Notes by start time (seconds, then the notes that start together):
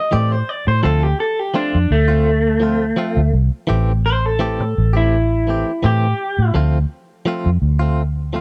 Already playing: D#5
0.11 A2 E3 A3 C4 G4 D5
0.32 C5
0.49 D5
0.67 A2 C5
0.83 D2 F3 A3 C4 F4 A4
1.03 G4
1.20 A4
1.39 G4
1.54 F3 A3 C4 D4 F4
1.75 F2
1.91 D2 A3
2.08 A3 C4 F4
2.60 F3 A3 C4 F4
2.96 F3 A3 C4 F4
3.17 D2
3.33 C2
3.67 A1 E3 A3 C4 G4
4.06 C5
4.26 A4
4.39 E3 A3 C4 G4
4.60 A2
4.78 A1
4.93 A3 C4 E4 G4
5.47 E3 A3 C4 G4
5.83 A2 E3 A3 C4 G4
6.39 A2
6.54 D2 F3 A3 C4 F4
7.26 F3 A3 C4 F4
7.46 F2
7.62 D2
7.79 A3 C4 F4
8.33 F3 A3 C4 F4